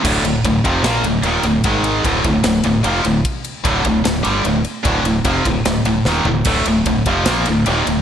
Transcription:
<<
  \new Staff \with { instrumentName = "Distorted electric guitar" } { \clef bass \time 4/4 \key d \phrygian \tempo 4 = 149 <d, a, d>8 <d, a,>8 <d, a,>8 <f, c f>8 <bes, f bes>8 <d, a,>8 <ees, bes, ees>8 <d, a,>8 | <gis, dis gis>4 <d, a, d>8 <d, a,>8 <d, a,>8 <d, a,>8 <f, c f>8 <d, a,>8 | r4 <d, a, d>8 <d, a,>8 <d, a,>8 <g, d g>8 <d, a,>8 r8 | <d, a, d>8 <d, a,>8 <f, c f>8 <d, a,>8 <d, a,>8 <d, a,>8 <ees, bes, ees>8 <d, a,>8 |
<d, a, d>8 <d, a,>8 <d, a,>8 <f, c f>8 <bes, f bes>8 <d, a,>8 <ees, bes, ees>8 <d, a,>8 | }
  \new Staff \with { instrumentName = "Fingered electric bass" } { \clef bass \time 4/4 \key d \phrygian d,,8 d,,8 d,,8 f,,8 bes,,8 d,,8 ees,,8 d,,8 | gis,,4 d,,8 d,,8 d,,8 d,,8 f,,8 d,,8 | r4 d,,8 d,,8 d,,8 g,,8 d,,8 r8 | d,,8 d,,8 f,,8 d,,8 d,,8 d,,8 ees,,8 d,,8 |
d,,8 d,,8 d,,8 f,,8 bes,,8 d,,8 ees,,8 d,,8 | }
  \new DrumStaff \with { instrumentName = "Drums" } \drummode { \time 4/4 <cymc bd>8 cymr8 <bd cymr>8 <bd cymr>8 <cymr sn>8 cymr8 cymr8 cymr8 | <bd cymr>8 cymr8 <bd cymr>8 <bd cymr>8 <cymr sn>8 cymr8 cymr8 cymr8 | <bd cymr>8 cymr8 <bd cymr>8 <bd cymr>8 <cymr sn>8 cymr8 cymr8 cymr8 | <bd cymr>8 cymr8 <bd cymr>8 <bd cymr>8 <cymr sn>8 cymr8 sn8 tomfh8 |
<cymc bd cymr>8 cymr8 <bd cymr>8 <bd cymr>8 <cymr sn>8 cymr8 cymr8 cymr8 | }
>>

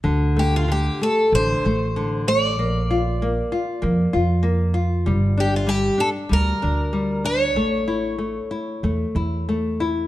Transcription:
<<
  \new Staff \with { instrumentName = "Twelve-string acoustic guitar" } { \time 4/4 \key d \minor \tempo 4 = 96 r8 g'16 f'16 g'8 a'8 c''4. d''8~ | d''2.~ d''8 r8 | r8 g'16 f'16 g'8 a'8 bes'4. cis''8~ | cis''2.~ cis''8 r8 | }
  \new Staff \with { instrumentName = "Nylon-string guitar" } { \time 4/4 \key d \minor d8 a8 d8 a8 d8 a8 d8 a8 | bes8 f'8 bes8 f'8 bes8 f'8 bes8 f'8 | g8 d'8 g8 d'8 g8 d'8 g8 d'8 | a8 e'8 a8 e'8 a8 e'8 a8 e'8 | }
  \new Staff \with { instrumentName = "Upright bass" } { \clef bass \time 4/4 \key d \minor d,2 a,,8 a,,4. | bes,,2 f,8 f,4. | g,,2 d,8 d,4. | a,,2 e,8 e,4. | }
>>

